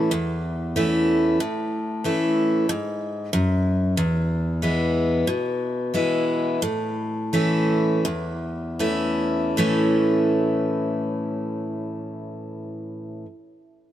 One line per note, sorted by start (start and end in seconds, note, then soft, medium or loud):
0.00 0.10 C#4 medium
0.00 0.10 E4 medium
0.11 1.36 E2 medium
0.76 1.38 E3 medium
0.76 1.38 A3 medium
0.76 1.38 C#4 medium
0.76 1.39 E4 medium
1.40 2.64 A2 medium
2.04 2.67 E3 soft
2.04 2.67 A3 medium
2.04 2.67 C#4 medium
2.04 2.67 E4 medium
2.69 3.31 G#2 medium
3.33 3.95 F#2 medium
3.97 5.23 E2 medium
4.62 5.25 E3 medium
4.62 5.26 G#3 medium
4.62 5.26 B3 medium
4.62 5.26 E4 medium
5.27 6.57 B2 medium
5.94 6.59 E3 medium
5.94 6.60 G#3 medium
5.94 6.60 B3 medium
5.94 6.60 E4 medium
6.62 7.99 A2 medium
7.33 8.02 E3 medium
7.33 8.03 A3 medium
7.33 8.03 C#4 medium
7.33 8.03 E4 medium
8.05 9.53 E2 medium
8.79 9.55 E3 soft
8.79 9.56 A3 medium
8.79 9.56 C#4 medium
8.79 9.56 E4 medium
9.57 13.24 A2 medium
9.57 13.25 E3 medium
9.57 13.25 A3 medium
9.57 13.26 C#4 medium
9.57 13.27 E4 medium